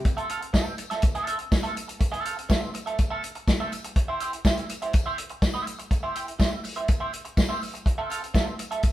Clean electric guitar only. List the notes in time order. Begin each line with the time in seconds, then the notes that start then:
0.05 muted clean electric guitar stroke
0.17 C4 F4 A4 E5
0.30 C4 F4 A4 F5
0.41 muted clean electric guitar stroke
0.53 C4 F4 A4 E5
0.65 muted clean electric guitar stroke
0.78 muted clean electric guitar stroke
0.90 C4 F4 A4 E5
1.03 muted clean electric guitar stroke
1.15 C4 F4 A4 E5
1.27 C4 F4 A4 E5
1.39 muted clean electric guitar stroke
1.51 muted clean electric guitar stroke
1.63 C4 F4 A4 E5
1.75 muted clean electric guitar stroke
1.88 muted clean electric guitar stroke
1.99 muted clean electric guitar stroke
2.12 C4 F4 A4 E5
2.25 C4 F4 A4 F5
2.37 muted clean electric guitar stroke
2.49 C4 F4 A4 E5
2.61 muted clean electric guitar stroke
2.74 muted clean electric guitar stroke
2.86 C4 F4 A4 E5
3.10 C4 F4 A4 E5
3.23 muted clean electric guitar stroke
3.35 muted clean electric guitar stroke
3.47 muted clean electric guitar stroke
3.60 C4 F4 A4 E5
3.72 muted clean electric guitar stroke
3.85 muted clean electric guitar stroke
3.97 muted clean electric guitar stroke
4.08 E4 G4 C5 E5
4.21 E4 G4 C5 G5
4.33 muted clean electric guitar stroke
4.45 E4 G4 C5 E5
4.58 muted clean electric guitar stroke
4.69 muted clean electric guitar stroke
4.82 E4 G4 C5 E5
4.94 muted clean electric guitar stroke
5.06 E4 G4 C5 E5
5.18 muted clean electric guitar stroke
5.30 muted clean electric guitar stroke
5.43 muted clean electric guitar stroke
5.54 E4 G4 C5 E5
5.66 muted clean electric guitar stroke
5.79 muted clean electric guitar stroke
5.91 muted clean electric guitar stroke
6.03 E4 G4 C5 E5
6.15 E4 G4 C5 G5
6.27 muted clean electric guitar stroke
6.39 E4 G4 C5 E5
6.51 muted clean electric guitar stroke
6.64 muted clean electric guitar stroke
6.76 E4 G4 C5 E5
6.88 muted clean electric guitar stroke
7.00 E4 G4 C5 E5
7.12 muted clean electric guitar stroke
7.25 muted clean electric guitar stroke
7.37 muted clean electric guitar stroke
7.49 E4 G4 C5 E5
7.61 muted clean electric guitar stroke
7.74 muted clean electric guitar stroke
7.86 muted clean electric guitar stroke
7.98 C4 F4 A4 E5
8.09 C4 F4 A4 F5
8.22 muted clean electric guitar stroke
8.34 C4 F4 A4 E5
8.47 muted clean electric guitar stroke
8.58 muted clean electric guitar stroke
8.71 C4 F4 A4 E5
8.82 muted clean electric guitar stroke